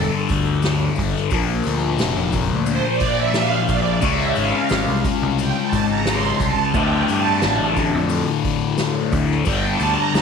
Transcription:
Already playing: distorted electric guitar G2 D3 G3, string machine A4
0.29 picked electric bass D2, kick, open hi-hat, shaker
0.62 snare, open hi-hat, shaker
0.95 picked electric bass G1, kick, open hi-hat, shaker
1.16 snare
1.30 picked electric bass A#1, distorted electric guitar A#2 F3 A#3, kick, open hi-hat, shaker
1.63 picked electric bass D2, open hi-hat, shaker
1.98 picked electric bass F1, snare, open hi-hat, shaker
2.16 picked electric bass F1
2.32 kick, open hi-hat, shaker
2.50 picked electric bass D2
2.66 string machine C5, open hi-hat, shaker
2.93 string machine D5
3.00 kick, open hi-hat, shaker
3.15 string machine E5
3.34 string machine F5, snare, open hi-hat, shaker
3.68 picked electric bass A#1, string machine D5, kick, open hi-hat, shaker
4.01 picked electric bass C#2, distorted electric guitar C#3 G#3 C#4, string machine E5, kick, open hi-hat, shaker
4.35 picked electric bass G#1, string machine F5, open hi-hat, shaker
4.69 picked electric bass G#1, snare, open hi-hat, shaker
4.88 picked electric bass C2
5.04 kick, open hi-hat, shaker
5.22 picked electric bass C2
5.38 string machine G5, open hi-hat, shaker
5.62 string machine A5
5.73 picked electric bass G#1, kick, open hi-hat, shaker
5.86 string machine A#5
6.05 string machine C6, snare, open hi-hat, shaker
6.40 picked electric bass C2, kick, open hi-hat, shaker
6.44 string machine A5
6.58 picked electric bass C#2
6.74 distorted electric guitar D2 A2 D3, picked electric bass D2, kick, crash, shaker
6.79 string machine G5
7.08 picked electric bass G2, open hi-hat, shaker
7.14 string machine A5
7.42 picked electric bass A1, snare, open hi-hat, shaker
7.61 picked electric bass A1
7.76 kick, open hi-hat, shaker
7.94 picked electric bass F2
8.09 open hi-hat, shaker
8.45 kick, open hi-hat
8.78 snare, open hi-hat, shaker
9.12 picked electric bass D2, kick, open hi-hat, shaker
9.31 snare
9.45 picked electric bass G1, distorted electric guitar G2 D3 G3, string machine G5, kick, open hi-hat, shaker
9.71 string machine A5
9.80 picked electric bass D2, open hi-hat, shaker
9.94 string machine A#5
10.14 picked electric bass D2, string machine C6, snare, open hi-hat, shaker

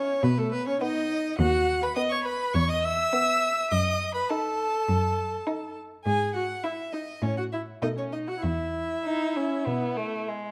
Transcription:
Already playing: viola C#4, violin C#5
0.23 cello B2, viola B3, violin B4
0.38 viola A3, violin A4
0.52 viola B3, violin B4
0.67 viola C#4, violin C#5
0.81 violin B3 D#5, viola D#4
1.38 cello D#2, viola F#4, violin F#5
1.82 viola B4, violin B5
1.95 violin B3 D#6, viola D#5
2.10 viola C#5, violin C#6
2.24 viola B4, violin B5
2.53 cello E2, viola C#5, violin C#6
2.69 viola D#5, violin D#6
2.83 viola E5, violin E6
3.13 violin B3
3.70 cello F#2, viola D#5, violin D#6
4.14 viola B4, violin B5
4.29 violin D#4 A5, viola A4
4.88 cello F#2
5.47 violin D#4
6.04 cello G#2, viola G#4, violin G#5
6.34 viola F#4, violin F#5
6.63 violin E4 E5, viola E4
6.92 viola D#4, violin D#5
7.22 cello A2, viola C#4, violin C#4 C#5
7.37 viola F#4, violin F#5
7.52 viola E4, violin E5
7.82 cello B2, violin A3 D#5, viola D#4
7.97 viola C#4, violin C#5
8.12 viola D#4, violin D#5
8.28 viola F#4, violin F#5
8.42 cello E2, viola E4, violin E5
9.05 violin D#4
9.36 violin C#4
9.67 cello B2, violin B3
9.97 violin A3
10.28 violin G#3

